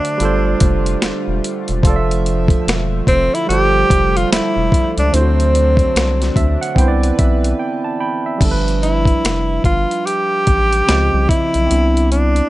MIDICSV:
0, 0, Header, 1, 6, 480
1, 0, Start_track
1, 0, Tempo, 821918
1, 1072, Time_signature, 4, 2, 24, 8
1, 7294, End_track
2, 0, Start_track
2, 0, Title_t, "Tine electric piano"
2, 0, Program_c, 0, 4
2, 0, Control_c, 0, 64, 127
2, 0, Note_on_c, 0, 50, 62
2, 0, Note_on_c, 0, 62, 67
2, 0, Note_on_c, 0, 66, 62
2, 0, Note_on_c, 0, 72, 76
2, 87, Note_off_c, 0, 50, 0
2, 95, Note_off_c, 0, 62, 0
2, 101, Note_off_c, 0, 66, 0
2, 104, Note_on_c, 0, 55, 80
2, 119, Control_c, 0, 64, 0
2, 120, Note_on_c, 0, 65, 70
2, 128, Note_off_c, 0, 72, 0
2, 132, Note_on_c, 0, 69, 72
2, 146, Note_on_c, 0, 72, 89
2, 210, Control_c, 0, 64, 127
2, 1048, Note_off_c, 0, 55, 0
2, 1056, Note_off_c, 0, 65, 0
2, 1063, Note_off_c, 0, 69, 0
2, 1066, Note_on_c, 0, 53, 80
2, 1070, Note_off_c, 0, 72, 0
2, 1080, Control_c, 0, 64, 0
2, 1080, Note_on_c, 0, 65, 77
2, 1093, Note_on_c, 0, 69, 74
2, 1106, Note_on_c, 0, 74, 68
2, 1135, Note_off_c, 0, 74, 0
2, 1145, Note_on_c, 0, 76, 82
2, 1169, Control_c, 0, 64, 127
2, 2010, Note_off_c, 0, 53, 0
2, 2017, Note_off_c, 0, 65, 0
2, 2021, Note_on_c, 0, 55, 66
2, 2023, Note_off_c, 0, 69, 0
2, 2033, Note_on_c, 0, 53, 66
2, 2040, Control_c, 0, 64, 0
2, 2046, Note_on_c, 0, 69, 60
2, 2050, Note_off_c, 0, 76, 0
2, 2061, Note_on_c, 0, 72, 77
2, 2130, Control_c, 0, 64, 127
2, 2967, Note_off_c, 0, 55, 0
2, 2973, Note_off_c, 0, 53, 0
2, 2977, Note_on_c, 0, 50, 68
2, 2980, Note_off_c, 0, 69, 0
2, 2987, Note_off_c, 0, 72, 0
2, 2990, Note_on_c, 0, 62, 57
2, 3000, Control_c, 0, 64, 0
2, 3005, Note_on_c, 0, 64, 50
2, 3017, Note_on_c, 0, 72, 76
2, 3042, Note_on_c, 0, 66, 54
2, 3044, Note_off_c, 0, 64, 0
2, 3113, Control_c, 0, 64, 127
2, 3717, Note_on_c, 0, 76, 74
2, 3850, Note_off_c, 0, 76, 0
2, 3863, Note_on_c, 0, 78, 76
2, 3925, Note_off_c, 0, 50, 0
2, 3931, Note_off_c, 0, 62, 0
2, 3940, Note_on_c, 0, 60, 81
2, 3945, Note_off_c, 0, 72, 0
2, 3948, Note_off_c, 0, 78, 0
2, 3955, Note_on_c, 0, 59, 75
2, 3958, Note_off_c, 0, 66, 0
2, 3958, Control_c, 0, 64, 0
2, 3960, Note_on_c, 0, 79, 67
2, 3965, Note_on_c, 0, 64, 72
2, 3979, Note_on_c, 0, 72, 72
2, 4011, Note_off_c, 0, 72, 0
2, 4017, Note_on_c, 0, 74, 84
2, 4053, Control_c, 0, 64, 127
2, 4179, Note_off_c, 0, 79, 0
2, 4198, Note_on_c, 0, 76, 73
2, 4418, Note_off_c, 0, 76, 0
2, 4435, Note_on_c, 0, 79, 62
2, 4569, Note_off_c, 0, 79, 0
2, 4581, Note_on_c, 0, 81, 69
2, 4667, Note_off_c, 0, 81, 0
2, 4674, Note_on_c, 0, 83, 65
2, 4675, Note_on_c, 0, 79, 65
2, 4812, Note_off_c, 0, 79, 0
2, 4823, Note_on_c, 0, 76, 64
2, 4886, Note_off_c, 0, 60, 0
2, 4894, Note_off_c, 0, 59, 0
2, 4894, Note_on_c, 0, 55, 69
2, 4896, Note_off_c, 0, 83, 0
2, 4899, Note_off_c, 0, 64, 0
2, 4908, Note_on_c, 0, 62, 71
2, 4918, Control_c, 0, 64, 0
2, 4921, Note_on_c, 0, 53, 62
2, 4926, Note_off_c, 0, 74, 0
2, 4932, Note_on_c, 0, 69, 64
2, 4968, Note_off_c, 0, 69, 0
2, 4971, Note_on_c, 0, 71, 82
2, 5026, Control_c, 0, 64, 127
2, 5049, Note_off_c, 0, 76, 0
2, 6319, Note_off_c, 0, 55, 0
2, 6326, Note_off_c, 0, 62, 0
2, 6333, Note_off_c, 0, 53, 0
2, 6346, Note_on_c, 0, 49, 62
2, 6350, Note_on_c, 0, 60, 49
2, 6358, Note_off_c, 0, 71, 0
2, 6359, Note_on_c, 0, 75, 54
2, 6360, Control_c, 0, 64, 0
2, 6367, Note_on_c, 0, 53, 62
2, 6473, Control_c, 0, 64, 127
2, 6806, Note_off_c, 0, 60, 0
2, 6813, Note_on_c, 0, 60, 62
2, 6826, Note_on_c, 0, 59, 54
2, 6829, Note_off_c, 0, 49, 0
2, 6835, Note_off_c, 0, 75, 0
2, 6838, Note_on_c, 0, 62, 55
2, 6839, Note_off_c, 0, 53, 0
2, 6840, Control_c, 0, 64, 0
2, 6851, Note_on_c, 0, 64, 64
2, 6958, Control_c, 0, 64, 127
2, 7294, Note_off_c, 0, 59, 0
2, 7294, Note_off_c, 0, 60, 0
2, 7294, Note_off_c, 0, 62, 0
2, 7294, Note_off_c, 0, 64, 0
2, 7294, End_track
3, 0, Start_track
3, 0, Title_t, "Tenor saxophone"
3, 0, Program_c, 1, 66
3, 0, Note_on_c, 1, 62, 86
3, 836, Note_off_c, 1, 62, 0
3, 1800, Note_on_c, 1, 60, 102
3, 1953, Note_on_c, 1, 64, 93
3, 1962, Note_off_c, 1, 60, 0
3, 2032, Note_off_c, 1, 64, 0
3, 2036, Note_on_c, 1, 67, 114
3, 2435, Note_on_c, 1, 65, 102
3, 2443, Note_off_c, 1, 67, 0
3, 2520, Note_off_c, 1, 65, 0
3, 2523, Note_on_c, 1, 64, 96
3, 2880, Note_off_c, 1, 64, 0
3, 2913, Note_on_c, 1, 62, 91
3, 3002, Note_on_c, 1, 60, 83
3, 3011, Note_off_c, 1, 62, 0
3, 3957, Note_off_c, 1, 60, 0
3, 5156, Note_on_c, 1, 64, 86
3, 5610, Note_off_c, 1, 64, 0
3, 5636, Note_on_c, 1, 65, 86
3, 5873, Note_on_c, 1, 67, 101
3, 5881, Note_off_c, 1, 65, 0
3, 6593, Note_on_c, 1, 64, 93
3, 6602, Note_off_c, 1, 67, 0
3, 7072, Note_off_c, 1, 64, 0
3, 7077, Note_on_c, 1, 62, 81
3, 7294, Note_off_c, 1, 62, 0
3, 7294, End_track
4, 0, Start_track
4, 0, Title_t, "Analog synth pad"
4, 0, Program_c, 2, 89
4, 0, Note_on_c, 2, 50, 75
4, 0, Note_on_c, 2, 54, 65
4, 0, Note_on_c, 2, 57, 65
4, 0, Note_on_c, 2, 62, 81
4, 104, Note_off_c, 2, 54, 0
4, 104, Note_off_c, 2, 62, 0
4, 117, Note_on_c, 2, 55, 64
4, 117, Note_on_c, 2, 65, 74
4, 1049, Note_off_c, 2, 57, 0
4, 1064, Note_off_c, 2, 65, 0
4, 1065, Note_off_c, 2, 55, 0
4, 1071, Note_on_c, 2, 57, 70
4, 1072, Note_on_c, 2, 53, 74
4, 1073, Note_on_c, 2, 76, 77
4, 2022, Note_off_c, 2, 53, 0
4, 2023, Note_off_c, 2, 76, 0
4, 2029, Note_on_c, 2, 55, 65
4, 2031, Note_on_c, 2, 53, 80
4, 2981, Note_off_c, 2, 53, 0
4, 2981, Note_off_c, 2, 55, 0
4, 2993, Note_on_c, 2, 62, 79
4, 2995, Note_on_c, 2, 54, 69
4, 3928, Note_off_c, 2, 57, 0
4, 3944, Note_off_c, 2, 54, 0
4, 3954, Note_on_c, 2, 52, 65
4, 3955, Note_on_c, 2, 71, 74
4, 4891, Note_off_c, 2, 50, 0
4, 4893, Note_off_c, 2, 62, 0
4, 4903, Note_off_c, 2, 52, 0
4, 4903, Note_off_c, 2, 71, 0
4, 7294, End_track
5, 0, Start_track
5, 0, Title_t, "Analog synth bass"
5, 0, Program_c, 3, 38
5, 120, Note_on_c, 3, 31, 102
5, 323, Note_off_c, 3, 31, 0
5, 359, Note_on_c, 3, 29, 94
5, 563, Note_off_c, 3, 29, 0
5, 600, Note_on_c, 3, 28, 46
5, 656, Note_off_c, 3, 28, 0
5, 746, Note_on_c, 3, 28, 81
5, 823, Note_off_c, 3, 28, 0
5, 988, Note_on_c, 3, 28, 87
5, 1065, Note_off_c, 3, 28, 0
5, 1073, Note_on_c, 3, 29, 102
5, 1487, Note_off_c, 3, 29, 0
5, 1560, Note_on_c, 3, 28, 98
5, 1764, Note_off_c, 3, 28, 0
5, 1797, Note_on_c, 3, 29, 90
5, 1921, Note_off_c, 3, 29, 0
5, 2040, Note_on_c, 3, 31, 97
5, 2244, Note_off_c, 3, 31, 0
5, 2282, Note_on_c, 3, 29, 92
5, 2484, Note_off_c, 3, 29, 0
5, 2518, Note_on_c, 3, 28, 49
5, 2575, Note_off_c, 3, 28, 0
5, 2666, Note_on_c, 3, 28, 85
5, 2744, Note_off_c, 3, 28, 0
5, 2906, Note_on_c, 3, 37, 79
5, 2984, Note_off_c, 3, 37, 0
5, 3000, Note_on_c, 3, 38, 108
5, 3411, Note_off_c, 3, 38, 0
5, 3480, Note_on_c, 3, 36, 88
5, 3684, Note_off_c, 3, 36, 0
5, 3716, Note_on_c, 3, 38, 94
5, 3840, Note_off_c, 3, 38, 0
5, 3951, Note_on_c, 3, 36, 116
5, 4158, Note_off_c, 3, 36, 0
5, 4200, Note_on_c, 3, 35, 103
5, 4403, Note_off_c, 3, 35, 0
5, 4914, Note_on_c, 3, 31, 109
5, 5327, Note_off_c, 3, 31, 0
5, 5400, Note_on_c, 3, 29, 89
5, 5604, Note_off_c, 3, 29, 0
5, 5635, Note_on_c, 3, 31, 82
5, 5759, Note_off_c, 3, 31, 0
5, 6118, Note_on_c, 3, 33, 89
5, 6322, Note_off_c, 3, 33, 0
5, 6361, Note_on_c, 3, 37, 91
5, 6483, Note_off_c, 3, 37, 0
5, 6504, Note_on_c, 3, 36, 88
5, 6582, Note_off_c, 3, 36, 0
5, 6745, Note_on_c, 3, 35, 69
5, 6823, Note_off_c, 3, 35, 0
5, 6841, Note_on_c, 3, 36, 106
5, 7251, Note_off_c, 3, 36, 0
5, 7294, End_track
6, 0, Start_track
6, 0, Title_t, "Drums"
6, 28, Note_on_c, 9, 42, 52
6, 86, Note_off_c, 9, 42, 0
6, 117, Note_on_c, 9, 42, 70
6, 176, Note_off_c, 9, 42, 0
6, 353, Note_on_c, 9, 42, 86
6, 356, Note_on_c, 9, 36, 99
6, 411, Note_off_c, 9, 42, 0
6, 415, Note_off_c, 9, 36, 0
6, 504, Note_on_c, 9, 42, 41
6, 562, Note_off_c, 9, 42, 0
6, 596, Note_on_c, 9, 26, 100
6, 596, Note_on_c, 9, 38, 110
6, 596, Note_on_c, 9, 42, 88
6, 655, Note_off_c, 9, 26, 0
6, 655, Note_off_c, 9, 38, 0
6, 655, Note_off_c, 9, 42, 0
6, 843, Note_on_c, 9, 42, 75
6, 902, Note_off_c, 9, 42, 0
6, 980, Note_on_c, 9, 42, 44
6, 1039, Note_off_c, 9, 42, 0
6, 1071, Note_on_c, 9, 36, 115
6, 1079, Note_on_c, 9, 42, 85
6, 1129, Note_off_c, 9, 36, 0
6, 1138, Note_off_c, 9, 42, 0
6, 1234, Note_on_c, 9, 42, 36
6, 1292, Note_off_c, 9, 42, 0
6, 1321, Note_on_c, 9, 42, 51
6, 1379, Note_off_c, 9, 42, 0
6, 1450, Note_on_c, 9, 36, 90
6, 1462, Note_on_c, 9, 42, 40
6, 1509, Note_off_c, 9, 36, 0
6, 1520, Note_off_c, 9, 42, 0
6, 1567, Note_on_c, 9, 42, 89
6, 1572, Note_on_c, 9, 26, 94
6, 1572, Note_on_c, 9, 38, 115
6, 1625, Note_off_c, 9, 42, 0
6, 1630, Note_off_c, 9, 26, 0
6, 1630, Note_off_c, 9, 38, 0
6, 1793, Note_on_c, 9, 36, 86
6, 1798, Note_on_c, 9, 42, 65
6, 1852, Note_off_c, 9, 36, 0
6, 1856, Note_off_c, 9, 42, 0
6, 1955, Note_on_c, 9, 42, 46
6, 2013, Note_off_c, 9, 42, 0
6, 2046, Note_on_c, 9, 42, 68
6, 2105, Note_off_c, 9, 42, 0
6, 2279, Note_on_c, 9, 36, 98
6, 2283, Note_on_c, 9, 42, 87
6, 2338, Note_off_c, 9, 36, 0
6, 2341, Note_off_c, 9, 42, 0
6, 2433, Note_on_c, 9, 42, 46
6, 2492, Note_off_c, 9, 42, 0
6, 2526, Note_on_c, 9, 26, 91
6, 2526, Note_on_c, 9, 38, 124
6, 2526, Note_on_c, 9, 42, 100
6, 2584, Note_off_c, 9, 26, 0
6, 2584, Note_off_c, 9, 38, 0
6, 2585, Note_off_c, 9, 42, 0
6, 2757, Note_on_c, 9, 36, 91
6, 2769, Note_on_c, 9, 42, 76
6, 2815, Note_off_c, 9, 36, 0
6, 2827, Note_off_c, 9, 42, 0
6, 2906, Note_on_c, 9, 42, 40
6, 2964, Note_off_c, 9, 42, 0
6, 3000, Note_on_c, 9, 42, 87
6, 3059, Note_off_c, 9, 42, 0
6, 3153, Note_on_c, 9, 42, 32
6, 3211, Note_off_c, 9, 42, 0
6, 3241, Note_on_c, 9, 42, 57
6, 3300, Note_off_c, 9, 42, 0
6, 3370, Note_on_c, 9, 36, 89
6, 3381, Note_on_c, 9, 42, 40
6, 3428, Note_off_c, 9, 36, 0
6, 3439, Note_off_c, 9, 42, 0
6, 3482, Note_on_c, 9, 42, 96
6, 3487, Note_on_c, 9, 26, 93
6, 3487, Note_on_c, 9, 38, 120
6, 3541, Note_off_c, 9, 42, 0
6, 3546, Note_off_c, 9, 26, 0
6, 3546, Note_off_c, 9, 38, 0
6, 3630, Note_on_c, 9, 42, 40
6, 3636, Note_on_c, 9, 38, 45
6, 3689, Note_off_c, 9, 42, 0
6, 3694, Note_off_c, 9, 38, 0
6, 3713, Note_on_c, 9, 36, 86
6, 3718, Note_on_c, 9, 42, 62
6, 3772, Note_off_c, 9, 36, 0
6, 3776, Note_off_c, 9, 42, 0
6, 3870, Note_on_c, 9, 42, 54
6, 3928, Note_off_c, 9, 42, 0
6, 3947, Note_on_c, 9, 36, 85
6, 3962, Note_on_c, 9, 42, 72
6, 4006, Note_off_c, 9, 36, 0
6, 4020, Note_off_c, 9, 42, 0
6, 4108, Note_on_c, 9, 42, 39
6, 4166, Note_off_c, 9, 42, 0
6, 4197, Note_on_c, 9, 42, 80
6, 4198, Note_on_c, 9, 36, 100
6, 4256, Note_off_c, 9, 42, 0
6, 4257, Note_off_c, 9, 36, 0
6, 4347, Note_on_c, 9, 42, 41
6, 4406, Note_off_c, 9, 42, 0
6, 4910, Note_on_c, 9, 36, 108
6, 4910, Note_on_c, 9, 49, 83
6, 4917, Note_on_c, 9, 42, 79
6, 4968, Note_off_c, 9, 36, 0
6, 4969, Note_off_c, 9, 49, 0
6, 4975, Note_off_c, 9, 42, 0
6, 5069, Note_on_c, 9, 42, 30
6, 5127, Note_off_c, 9, 42, 0
6, 5157, Note_on_c, 9, 42, 42
6, 5216, Note_off_c, 9, 42, 0
6, 5288, Note_on_c, 9, 36, 78
6, 5299, Note_on_c, 9, 42, 35
6, 5346, Note_off_c, 9, 36, 0
6, 5358, Note_off_c, 9, 42, 0
6, 5401, Note_on_c, 9, 42, 97
6, 5406, Note_on_c, 9, 26, 98
6, 5406, Note_on_c, 9, 38, 100
6, 5460, Note_off_c, 9, 42, 0
6, 5465, Note_off_c, 9, 26, 0
6, 5465, Note_off_c, 9, 38, 0
6, 5631, Note_on_c, 9, 36, 83
6, 5634, Note_on_c, 9, 42, 54
6, 5689, Note_off_c, 9, 36, 0
6, 5693, Note_off_c, 9, 42, 0
6, 5789, Note_on_c, 9, 42, 43
6, 5847, Note_off_c, 9, 42, 0
6, 5882, Note_on_c, 9, 42, 66
6, 5940, Note_off_c, 9, 42, 0
6, 6114, Note_on_c, 9, 42, 73
6, 6116, Note_on_c, 9, 36, 92
6, 6172, Note_off_c, 9, 42, 0
6, 6174, Note_off_c, 9, 36, 0
6, 6264, Note_on_c, 9, 42, 40
6, 6322, Note_off_c, 9, 42, 0
6, 6358, Note_on_c, 9, 26, 79
6, 6358, Note_on_c, 9, 38, 115
6, 6358, Note_on_c, 9, 42, 91
6, 6416, Note_off_c, 9, 26, 0
6, 6416, Note_off_c, 9, 38, 0
6, 6416, Note_off_c, 9, 42, 0
6, 6593, Note_on_c, 9, 36, 85
6, 6603, Note_on_c, 9, 42, 64
6, 6651, Note_off_c, 9, 36, 0
6, 6661, Note_off_c, 9, 42, 0
6, 6740, Note_on_c, 9, 42, 43
6, 6798, Note_off_c, 9, 42, 0
6, 6837, Note_on_c, 9, 42, 78
6, 6896, Note_off_c, 9, 42, 0
6, 6990, Note_on_c, 9, 42, 32
6, 7049, Note_off_c, 9, 42, 0
6, 7076, Note_on_c, 9, 42, 50
6, 7135, Note_off_c, 9, 42, 0
6, 7218, Note_on_c, 9, 42, 36
6, 7277, Note_off_c, 9, 42, 0
6, 7294, End_track
0, 0, End_of_file